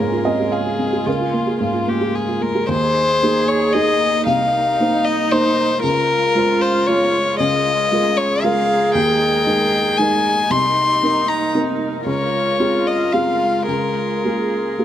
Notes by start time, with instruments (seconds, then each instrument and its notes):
Already playing: felt piano C#2 C4 F4 G#4 C#5, string section A#3 F4 G#4
0.00 felt piano G#2, violin A#4
0.13 felt piano F4
0.25 felt piano C4 D#5
0.40 felt piano G#4
0.52 violin G#4, felt piano F5
0.66 felt piano F4
0.79 felt piano C4
0.93 felt piano G#4
1.06 felt piano C#2 A#4, string section A#3, violin F4
1.21 felt piano F4
1.33 felt piano A#3
1.47 felt piano G#4
1.60 felt piano G#2, violin F4
1.74 felt piano F4
1.87 felt piano A#3, violin G4
2.01 felt piano G#4
2.15 violin G#4
2.28 felt piano F4
2.41 felt piano A#3, violin A#4
2.55 felt piano G#4
2.68 felt piano D#2, string section A#3 D#4 G#4, viola G#4, violin C5
3.23 felt piano A#3 D#4 G#4
3.48 violin C#5
3.73 felt piano A#3 D#4 G#4, violin D#5
4.26 felt piano C2, viola D#4, string section A#4, violin F5
4.80 felt piano A#3 D#4 C5
5.05 violin D#5
5.31 felt piano A#3 D#4 C5, violin C5
5.83 felt piano C#2, string section G#3 F4, viola F4, violin A#4
6.35 felt piano G#3 F4 C5
6.61 violin C5
6.87 felt piano G#3 F4 C#5, violin C#5
7.39 felt piano C#2, viola G#4, string section A#4, violin D#5
7.92 felt piano G#3 F4 A#4
8.17 violin C#5
8.43 felt piano G#3 F4 A#4, violin F5
8.95 felt piano D#2, string section D#4, violin G5
9.47 felt piano G#3 D#4 A#4
9.97 felt piano G#3 D#4 A#4, violin G#5
10.50 felt piano C2, string section A#3 A#4, viola D#4, violin C6
11.02 felt piano C4 D#4 A#4
11.28 violin A#5
11.55 felt piano C4 D#4 A#4
12.05 felt piano C#2, string section G#3 F4, viola F4, violin C#5
12.60 felt piano C4 F4 G#4
12.87 violin D#5
13.12 felt piano C4 F4 G#4, violin F5
13.67 felt piano C#2, viola G#4, string section A#4, violin A#4
14.24 felt piano A#3 F4 G#4
14.78 felt piano A#3 F4 G#4